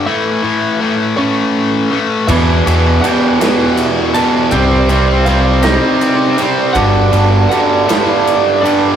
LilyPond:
<<
  \new Staff \with { instrumentName = "Lead electric guitar" } { \time 6/8 \key e \minor \tempo 4. = 54 <e' e''>4. <cis' cis''>4 r8 | <e' e''>4 <g' g''>4. <a' a''>8 | <g' g''>4 <f' f''>8 <ees' ees''>4 r8 | <fis' fis''>4 <fis' fis''>8 <e' e''>4 <d' d''>8 | }
  \new Staff \with { instrumentName = "Distorted electric guitar" } { \clef bass \time 6/8 \key e \minor <a, e a>8 <a, e a>8 <a, e a>8 <a, e a>4 <a, e a>8 | <e, b, e>8 <e, b, e>8 <e, b, e>8 <e, b, e>4 <e, b, e>8 | <c g c'>8 <c g c'>8 <c g c'>8 <c g c'>4 <c g c'>8 | <g, d g>8 <g, d g>8 <g, d g>8 <g, d g>4 <g, d g>8 | }
  \new Staff \with { instrumentName = "Overdriven electric guitar" } { \clef bass \time 6/8 \key e \minor r2. | <e, b, e>8 <e, b, e>8 <e, b, e>8 <e, b, e>4 <e, b, e>8 | <c g c'>8 <c g c'>8 <c g c'>8 <c g c'>4 <c g c'>8 | <g, d g>8 <g, d g>8 <g, d g>8 <g, d g>4 <g, d g>8 | }
  \new Staff \with { instrumentName = "Picked electric bass" } { \clef bass \time 6/8 \key e \minor r2. | e,8 e,8 r2 | c,2 r4 | g,,8 g,,8 r2 | }
  \new DrumStaff \with { instrumentName = "Drums" } \drummode { \time 6/8 r4. r4. | <cymc bd>8 cymr8 cymr8 <cymr sn>8 cymr8 cymr8 | <bd cymr>8 cymr8 cymr8 <cymr sn>8 cymr8 cymr8 | <bd cymr>8 cymr8 cymr8 <cymr sn>8 cymr8 cymr8 | }
>>